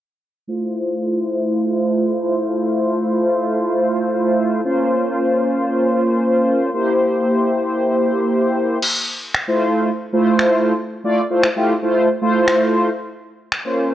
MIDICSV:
0, 0, Header, 1, 3, 480
1, 0, Start_track
1, 0, Key_signature, -1, "major"
1, 0, Tempo, 521739
1, 440, Time_signature, 4, 2, 24, 8
1, 12828, End_track
2, 0, Start_track
2, 0, Title_t, "Analog polysynth"
2, 0, Program_c, 0, 90
2, 436, Note_on_c, 0, 57, 74
2, 440, Note_on_c, 0, 64, 70
2, 442, Note_on_c, 0, 65, 72
2, 446, Note_on_c, 0, 72, 87
2, 4241, Note_off_c, 0, 57, 0
2, 4243, Note_off_c, 0, 64, 0
2, 4244, Note_off_c, 0, 65, 0
2, 4246, Note_off_c, 0, 72, 0
2, 4273, Note_on_c, 0, 58, 75
2, 4277, Note_on_c, 0, 61, 70
2, 4280, Note_on_c, 0, 65, 70
2, 4283, Note_on_c, 0, 72, 88
2, 6160, Note_off_c, 0, 58, 0
2, 6161, Note_off_c, 0, 61, 0
2, 6163, Note_off_c, 0, 65, 0
2, 6164, Note_off_c, 0, 72, 0
2, 6195, Note_on_c, 0, 58, 79
2, 6198, Note_on_c, 0, 64, 70
2, 6201, Note_on_c, 0, 67, 72
2, 6203, Note_on_c, 0, 72, 89
2, 8080, Note_off_c, 0, 58, 0
2, 8082, Note_off_c, 0, 64, 0
2, 8083, Note_off_c, 0, 67, 0
2, 8085, Note_off_c, 0, 72, 0
2, 8718, Note_on_c, 0, 57, 81
2, 8719, Note_on_c, 0, 64, 72
2, 8720, Note_on_c, 0, 65, 74
2, 8722, Note_on_c, 0, 72, 89
2, 9109, Note_off_c, 0, 57, 0
2, 9110, Note_off_c, 0, 64, 0
2, 9110, Note_off_c, 0, 65, 0
2, 9111, Note_off_c, 0, 72, 0
2, 9316, Note_on_c, 0, 57, 96
2, 9317, Note_on_c, 0, 64, 87
2, 9319, Note_on_c, 0, 65, 84
2, 9320, Note_on_c, 0, 72, 105
2, 9865, Note_off_c, 0, 57, 0
2, 9865, Note_off_c, 0, 64, 0
2, 9866, Note_off_c, 0, 65, 0
2, 9867, Note_off_c, 0, 72, 0
2, 10156, Note_on_c, 0, 57, 91
2, 10158, Note_on_c, 0, 64, 83
2, 10159, Note_on_c, 0, 65, 82
2, 10162, Note_on_c, 0, 74, 98
2, 10314, Note_off_c, 0, 57, 0
2, 10315, Note_off_c, 0, 64, 0
2, 10316, Note_off_c, 0, 65, 0
2, 10317, Note_off_c, 0, 74, 0
2, 10398, Note_on_c, 0, 57, 83
2, 10398, Note_on_c, 0, 64, 74
2, 10399, Note_on_c, 0, 65, 73
2, 10401, Note_on_c, 0, 72, 88
2, 10555, Note_off_c, 0, 57, 0
2, 10555, Note_off_c, 0, 64, 0
2, 10556, Note_off_c, 0, 65, 0
2, 10557, Note_off_c, 0, 72, 0
2, 10637, Note_on_c, 0, 57, 90
2, 10639, Note_on_c, 0, 64, 82
2, 10640, Note_on_c, 0, 65, 85
2, 10641, Note_on_c, 0, 67, 100
2, 10794, Note_off_c, 0, 57, 0
2, 10795, Note_off_c, 0, 64, 0
2, 10796, Note_off_c, 0, 65, 0
2, 10796, Note_off_c, 0, 67, 0
2, 10876, Note_on_c, 0, 57, 89
2, 10878, Note_on_c, 0, 64, 80
2, 10880, Note_on_c, 0, 65, 83
2, 10881, Note_on_c, 0, 72, 95
2, 11112, Note_off_c, 0, 57, 0
2, 11113, Note_off_c, 0, 64, 0
2, 11114, Note_off_c, 0, 65, 0
2, 11115, Note_off_c, 0, 72, 0
2, 11237, Note_on_c, 0, 57, 90
2, 11239, Note_on_c, 0, 64, 86
2, 11239, Note_on_c, 0, 65, 87
2, 11242, Note_on_c, 0, 72, 108
2, 11863, Note_off_c, 0, 57, 0
2, 11864, Note_off_c, 0, 64, 0
2, 11864, Note_off_c, 0, 65, 0
2, 11866, Note_off_c, 0, 72, 0
2, 12556, Note_on_c, 0, 58, 80
2, 12558, Note_on_c, 0, 61, 72
2, 12559, Note_on_c, 0, 65, 74
2, 12561, Note_on_c, 0, 72, 89
2, 12828, Note_off_c, 0, 58, 0
2, 12828, Note_off_c, 0, 61, 0
2, 12828, Note_off_c, 0, 65, 0
2, 12828, Note_off_c, 0, 72, 0
2, 12828, End_track
3, 0, Start_track
3, 0, Title_t, "Drums"
3, 8120, Note_on_c, 9, 49, 86
3, 8212, Note_off_c, 9, 49, 0
3, 8599, Note_on_c, 9, 26, 103
3, 8691, Note_off_c, 9, 26, 0
3, 9560, Note_on_c, 9, 26, 93
3, 9652, Note_off_c, 9, 26, 0
3, 10521, Note_on_c, 9, 26, 106
3, 10613, Note_off_c, 9, 26, 0
3, 11479, Note_on_c, 9, 26, 92
3, 11571, Note_off_c, 9, 26, 0
3, 12441, Note_on_c, 9, 26, 105
3, 12533, Note_off_c, 9, 26, 0
3, 12828, End_track
0, 0, End_of_file